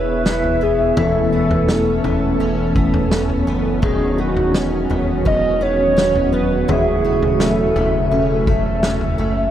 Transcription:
Already playing: analog synth bass E1, twelve-string acoustic guitar E3 B3 E4 G#4, analog synth pad B3 E4 G#4, soft synth lead B4
0.25 twelve-string acoustic guitar E4, snare
0.44 floor tom
0.61 twelve-string acoustic guitar B3, soft synth lead G#4
0.96 analog synth bass E1, analog synth pad E3 A3 C#4 A4, twelve-string acoustic guitar E3, soft synth lead A4, floor tom
1.33 twelve-string acoustic guitar B3
1.51 floor tom
1.68 twelve-string acoustic guitar C#4, snare
2.04 analog synth bass E1, twelve-string acoustic guitar B3, floor tom
2.40 analog synth bass E1, twelve-string acoustic guitar C#4
2.76 twelve-string acoustic guitar B3, kick
2.94 floor tom
3.11 twelve-string acoustic guitar C#4, snare
3.29 floor tom
3.47 analog synth bass F#1, twelve-string acoustic guitar B3
3.82 analog synth bass E1, twelve-string acoustic guitar D#3, analog synth pad D#3 F#3 F#4, soft synth lead G#4, kick, floor tom
4.18 twelve-string acoustic guitar B3, soft synth lead F#4
4.37 floor tom
4.54 twelve-string acoustic guitar C#4, snare
4.90 analog synth bass E1, twelve-string acoustic guitar B3, floor tom
5.25 analog synth bass E1, twelve-string acoustic guitar C#4, soft synth lead D#5, kick
5.61 twelve-string acoustic guitar B3, soft synth lead C#5
5.97 twelve-string acoustic guitar C#4, snare
6.16 floor tom
6.33 twelve-string acoustic guitar B3, soft synth lead B4
6.68 analog synth bass E1, analog synth pad C#3 A3, twelve-string acoustic guitar E3, soft synth lead G#4, floor tom
7.05 twelve-string acoustic guitar A3
7.23 floor tom
7.40 twelve-string acoustic guitar C#4, soft synth lead A4, snare
7.75 analog synth bass E1, twelve-string acoustic guitar A3, floor tom
8.11 analog synth bass E1, twelve-string acoustic guitar C#4
8.47 twelve-string acoustic guitar A3, kick
8.83 twelve-string acoustic guitar C#4, snare
9.01 floor tom
9.18 analog synth bass F#1, twelve-string acoustic guitar A3

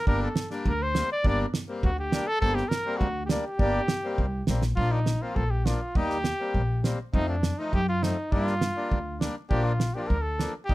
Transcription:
0.07 upright bass G1, accordion G3 A#3 D4, cornet A#4, kick
0.23 cornet A4
0.36 snare
0.51 accordion G3 A#3 D4, snare
0.65 upright bass D2, cornet A#4, kick
0.82 cornet C5
0.95 accordion G3 A#3 C4, snare
1.12 cornet D5
1.24 upright bass G1, accordion G3 A#3 D4, kick
1.28 cornet D5
1.54 snare
1.68 accordion G3 A#3 C4
1.83 upright bass D2, cornet F#4, kick
1.99 cornet G4
2.12 accordion G3 A#3 D4, snare
2.27 cornet A4
2.41 upright bass G1, accordion G3 A#3 C4, cornet A4, kick
2.55 cornet G4, snare
2.69 cornet A#4, snare
2.85 accordion G3 A#3 C4
2.97 upright bass D2, cornet F#4, kick
3.26 accordion G3 D4, cornet G4, snare
3.30 accordion A#3
3.42 cornet G4
3.59 upright bass G1, accordion G3 A#3 D4, kick
3.88 snare
4.04 accordion G3 A#3 C4
4.18 upright bass C2, kick
4.47 upright bass A#1, accordion G3 A#3 C4, snare
4.62 snare
4.76 upright bass A#1, accordion F3 A#3 D4, cornet F4, kick
4.92 cornet D#4
5.06 snare
5.22 accordion F3 A#3 C4, cornet F4
5.36 upright bass A#1, cornet A4, kick
5.51 cornet G4
5.65 accordion F3 A#3 D4, cornet F4, snare
5.95 upright bass D#2, accordion G3 A#3 D#4, cornet G4, kick
6.10 snare
6.24 snare
6.40 accordion G3 A#3 C4
6.54 upright bass A#1, kick
6.84 accordion G3 A#3 C4, snare
7.13 upright bass F2, accordion F3 A3 C4, cornet D#4, kick
7.29 cornet D4
7.43 snare
7.58 accordion F3 A3 D#4, cornet D#4
7.73 upright bass F#2, cornet G4, kick
7.89 cornet F4
8.02 accordion F3 A3 C4, cornet D#4, snare
8.32 upright bass G2, accordion G3 A#3 D4, cornet F4, kick
8.47 snare
8.61 snare
8.77 accordion G3 A#3 D4
8.91 upright bass D2, kick
9.20 accordion G3 A#3 D4, snare
9.50 upright bass A#1, accordion F3 A#3 D4, cornet G4, kick
9.64 cornet F4
9.80 snare
9.94 accordion F3 A#3 D4, cornet G4
9.98 cornet F4 G4
10.07 upright bass D2, cornet A#4, kick
10.22 cornet A4
10.39 accordion F3 A#3 D4, snare
10.65 accordion G3, cornet G4
10.69 upright bass D#2, accordion A#3 D#4, kick

